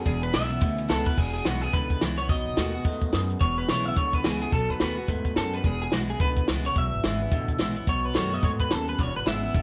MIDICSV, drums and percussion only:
0, 0, Header, 1, 2, 480
1, 0, Start_track
1, 0, Key_signature, 4, "major"
1, 0, Tempo, 279070
1, 101, Time_signature, 4, 2, 24, 8
1, 16548, End_track
2, 0, Start_track
2, 0, Title_t, "Drums"
2, 99, Note_on_c, 9, 36, 93
2, 99, Note_on_c, 9, 51, 72
2, 271, Note_off_c, 9, 36, 0
2, 271, Note_off_c, 9, 51, 0
2, 392, Note_on_c, 9, 51, 68
2, 564, Note_off_c, 9, 51, 0
2, 578, Note_on_c, 9, 38, 121
2, 578, Note_on_c, 9, 51, 94
2, 750, Note_off_c, 9, 38, 0
2, 750, Note_off_c, 9, 51, 0
2, 866, Note_on_c, 9, 51, 58
2, 1038, Note_off_c, 9, 51, 0
2, 1056, Note_on_c, 9, 51, 84
2, 1059, Note_on_c, 9, 36, 119
2, 1228, Note_off_c, 9, 51, 0
2, 1231, Note_off_c, 9, 36, 0
2, 1345, Note_on_c, 9, 51, 65
2, 1517, Note_off_c, 9, 51, 0
2, 1542, Note_on_c, 9, 38, 120
2, 1542, Note_on_c, 9, 51, 77
2, 1714, Note_off_c, 9, 38, 0
2, 1714, Note_off_c, 9, 51, 0
2, 1829, Note_on_c, 9, 36, 88
2, 1830, Note_on_c, 9, 51, 65
2, 2001, Note_off_c, 9, 36, 0
2, 2002, Note_off_c, 9, 51, 0
2, 2022, Note_on_c, 9, 49, 81
2, 2023, Note_on_c, 9, 36, 99
2, 2194, Note_off_c, 9, 49, 0
2, 2195, Note_off_c, 9, 36, 0
2, 2498, Note_on_c, 9, 38, 106
2, 2498, Note_on_c, 9, 42, 62
2, 2670, Note_off_c, 9, 38, 0
2, 2670, Note_off_c, 9, 42, 0
2, 2984, Note_on_c, 9, 36, 100
2, 2984, Note_on_c, 9, 42, 70
2, 3156, Note_off_c, 9, 36, 0
2, 3156, Note_off_c, 9, 42, 0
2, 3269, Note_on_c, 9, 42, 63
2, 3270, Note_on_c, 9, 36, 82
2, 3441, Note_off_c, 9, 42, 0
2, 3442, Note_off_c, 9, 36, 0
2, 3462, Note_on_c, 9, 38, 102
2, 3462, Note_on_c, 9, 42, 71
2, 3634, Note_off_c, 9, 38, 0
2, 3634, Note_off_c, 9, 42, 0
2, 3750, Note_on_c, 9, 42, 64
2, 3922, Note_off_c, 9, 42, 0
2, 3943, Note_on_c, 9, 36, 107
2, 3943, Note_on_c, 9, 42, 56
2, 4115, Note_off_c, 9, 36, 0
2, 4115, Note_off_c, 9, 42, 0
2, 4422, Note_on_c, 9, 38, 113
2, 4422, Note_on_c, 9, 42, 66
2, 4594, Note_off_c, 9, 38, 0
2, 4594, Note_off_c, 9, 42, 0
2, 4895, Note_on_c, 9, 42, 62
2, 4900, Note_on_c, 9, 36, 117
2, 5067, Note_off_c, 9, 42, 0
2, 5072, Note_off_c, 9, 36, 0
2, 5184, Note_on_c, 9, 42, 60
2, 5187, Note_on_c, 9, 36, 85
2, 5356, Note_off_c, 9, 42, 0
2, 5359, Note_off_c, 9, 36, 0
2, 5380, Note_on_c, 9, 38, 107
2, 5380, Note_on_c, 9, 42, 64
2, 5552, Note_off_c, 9, 38, 0
2, 5552, Note_off_c, 9, 42, 0
2, 5669, Note_on_c, 9, 42, 62
2, 5841, Note_off_c, 9, 42, 0
2, 5858, Note_on_c, 9, 42, 59
2, 5861, Note_on_c, 9, 36, 112
2, 6030, Note_off_c, 9, 42, 0
2, 6033, Note_off_c, 9, 36, 0
2, 6338, Note_on_c, 9, 38, 112
2, 6338, Note_on_c, 9, 42, 66
2, 6510, Note_off_c, 9, 38, 0
2, 6510, Note_off_c, 9, 42, 0
2, 6818, Note_on_c, 9, 42, 67
2, 6821, Note_on_c, 9, 36, 105
2, 6990, Note_off_c, 9, 42, 0
2, 6993, Note_off_c, 9, 36, 0
2, 7105, Note_on_c, 9, 42, 66
2, 7108, Note_on_c, 9, 36, 80
2, 7277, Note_off_c, 9, 42, 0
2, 7280, Note_off_c, 9, 36, 0
2, 7298, Note_on_c, 9, 38, 110
2, 7298, Note_on_c, 9, 42, 65
2, 7470, Note_off_c, 9, 38, 0
2, 7470, Note_off_c, 9, 42, 0
2, 7585, Note_on_c, 9, 42, 65
2, 7757, Note_off_c, 9, 42, 0
2, 7781, Note_on_c, 9, 36, 103
2, 7781, Note_on_c, 9, 42, 51
2, 7953, Note_off_c, 9, 36, 0
2, 7953, Note_off_c, 9, 42, 0
2, 8256, Note_on_c, 9, 38, 123
2, 8256, Note_on_c, 9, 42, 71
2, 8428, Note_off_c, 9, 38, 0
2, 8428, Note_off_c, 9, 42, 0
2, 8740, Note_on_c, 9, 42, 63
2, 8742, Note_on_c, 9, 36, 105
2, 8912, Note_off_c, 9, 42, 0
2, 8914, Note_off_c, 9, 36, 0
2, 9027, Note_on_c, 9, 42, 63
2, 9029, Note_on_c, 9, 36, 83
2, 9199, Note_off_c, 9, 42, 0
2, 9201, Note_off_c, 9, 36, 0
2, 9221, Note_on_c, 9, 38, 110
2, 9221, Note_on_c, 9, 42, 58
2, 9393, Note_off_c, 9, 38, 0
2, 9393, Note_off_c, 9, 42, 0
2, 9515, Note_on_c, 9, 42, 65
2, 9687, Note_off_c, 9, 42, 0
2, 9699, Note_on_c, 9, 42, 53
2, 9702, Note_on_c, 9, 36, 107
2, 9871, Note_off_c, 9, 42, 0
2, 9874, Note_off_c, 9, 36, 0
2, 10178, Note_on_c, 9, 38, 123
2, 10178, Note_on_c, 9, 42, 66
2, 10350, Note_off_c, 9, 38, 0
2, 10350, Note_off_c, 9, 42, 0
2, 10657, Note_on_c, 9, 42, 72
2, 10663, Note_on_c, 9, 36, 107
2, 10829, Note_off_c, 9, 42, 0
2, 10835, Note_off_c, 9, 36, 0
2, 10947, Note_on_c, 9, 42, 67
2, 10950, Note_on_c, 9, 36, 83
2, 11119, Note_off_c, 9, 42, 0
2, 11122, Note_off_c, 9, 36, 0
2, 11142, Note_on_c, 9, 38, 116
2, 11142, Note_on_c, 9, 42, 60
2, 11314, Note_off_c, 9, 38, 0
2, 11314, Note_off_c, 9, 42, 0
2, 11436, Note_on_c, 9, 42, 61
2, 11608, Note_off_c, 9, 42, 0
2, 11623, Note_on_c, 9, 42, 55
2, 11625, Note_on_c, 9, 36, 88
2, 11795, Note_off_c, 9, 42, 0
2, 11797, Note_off_c, 9, 36, 0
2, 12105, Note_on_c, 9, 38, 107
2, 12105, Note_on_c, 9, 42, 66
2, 12277, Note_off_c, 9, 38, 0
2, 12277, Note_off_c, 9, 42, 0
2, 12581, Note_on_c, 9, 42, 62
2, 12584, Note_on_c, 9, 36, 115
2, 12753, Note_off_c, 9, 42, 0
2, 12756, Note_off_c, 9, 36, 0
2, 12869, Note_on_c, 9, 42, 64
2, 12871, Note_on_c, 9, 36, 78
2, 13041, Note_off_c, 9, 42, 0
2, 13043, Note_off_c, 9, 36, 0
2, 13058, Note_on_c, 9, 38, 118
2, 13058, Note_on_c, 9, 42, 66
2, 13230, Note_off_c, 9, 38, 0
2, 13230, Note_off_c, 9, 42, 0
2, 13343, Note_on_c, 9, 42, 60
2, 13515, Note_off_c, 9, 42, 0
2, 13537, Note_on_c, 9, 42, 58
2, 13540, Note_on_c, 9, 36, 93
2, 13709, Note_off_c, 9, 42, 0
2, 13712, Note_off_c, 9, 36, 0
2, 14016, Note_on_c, 9, 38, 110
2, 14016, Note_on_c, 9, 42, 63
2, 14188, Note_off_c, 9, 38, 0
2, 14188, Note_off_c, 9, 42, 0
2, 14497, Note_on_c, 9, 42, 65
2, 14499, Note_on_c, 9, 36, 116
2, 14669, Note_off_c, 9, 42, 0
2, 14671, Note_off_c, 9, 36, 0
2, 14786, Note_on_c, 9, 36, 81
2, 14789, Note_on_c, 9, 42, 68
2, 14958, Note_off_c, 9, 36, 0
2, 14961, Note_off_c, 9, 42, 0
2, 14976, Note_on_c, 9, 38, 110
2, 14976, Note_on_c, 9, 42, 66
2, 15148, Note_off_c, 9, 38, 0
2, 15148, Note_off_c, 9, 42, 0
2, 15266, Note_on_c, 9, 42, 74
2, 15438, Note_off_c, 9, 42, 0
2, 15458, Note_on_c, 9, 36, 103
2, 15459, Note_on_c, 9, 42, 53
2, 15630, Note_off_c, 9, 36, 0
2, 15631, Note_off_c, 9, 42, 0
2, 15940, Note_on_c, 9, 38, 110
2, 15940, Note_on_c, 9, 42, 66
2, 16112, Note_off_c, 9, 38, 0
2, 16112, Note_off_c, 9, 42, 0
2, 16415, Note_on_c, 9, 42, 62
2, 16417, Note_on_c, 9, 36, 113
2, 16548, Note_off_c, 9, 36, 0
2, 16548, Note_off_c, 9, 42, 0
2, 16548, End_track
0, 0, End_of_file